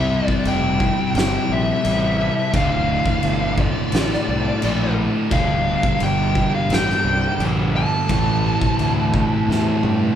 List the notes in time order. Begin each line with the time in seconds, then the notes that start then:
Already playing: C2 C3 G3 C4 E4 G4 C5 E5
0.26 D5, kick
0.45 F1 G5, crash
0.79 G3 C4 E4 G4 C5, kick
0.83 C3
1.14 G1 C3 G3 C4 G5, snare, crash
1.49 A#1 E5
1.83 A1 C3 G3 C4 E4 G4 C5, crash
2.53 D1 D2 A2 D3 A3 F4 F5, kick, crash
3.06 kick
3.23 G1, crash
3.58 D2 A2 D3 A3 F4 D5, kick
3.92 A1 D2 A2 D3, snare, crash
4.13 snare
4.28 C2
4.62 A#1 D2 A2 D3 A3 F4, crash
5.30 D1 G2 D3 G3 A#3 D4 G4 F5, kick, crash
5.83 kick
6.00 G1 G5, crash
6.35 G2 D3 G3 A#3 D4 G4, kick
6.55 F5
6.69 A1 G2 D3, crash
6.73 G3 G5, snare
6.90 snare
7.04 C2
7.39 A#1 G2 D3 G3 A#3 D4 G4, crash
7.76 A5
8.09 A1 A2 E3 A3 C4 E4, kick, crash
8.13 A4
8.61 kick
8.79 D2, crash
9.13 A2 E3 A3 C4 E4 A4, kick
9.47 E2 A2 E3 A3, snare
9.83 G2, high tom